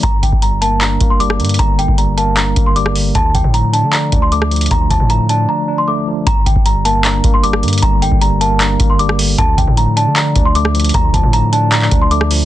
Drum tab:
HH |x---x---x---x---x---x---x---xxxx|x---x---x---x---x---x---x---o---|x---x---x---x---x---x---x---xxxx|x---x---x---x-------------------|
CP |----------------x---------------|----------------x---------------|----------------x---------------|--------------------------------|
SD |--------------------------r-----|--------------------------r-----|--------------------------r-----|--------------------------------|
BD |o---o-o-------------o-----------|o-----o-------------o-----------|o---o-o-------------o-----------|o---o-o-------------------------|

HH |x---x---x---x---x---x---x---xxxx|x---x---x---x---x---x---x---o---|x---x---x---x---x---x---x---xxxx|x---x---x---x---x---x---x---o---|
CP |----------------x---------------|----------------x---------------|----------------x---------------|----------------x-x-------------|
SD |--------------------------r-----|--------------------------r-----|--------------------------r-----|--------------------------r-----|
BD |o---o-o-------------o-----------|o-----o-------------o-----------|o---o-o-------------o-----------|o---o-o-------------o-----------|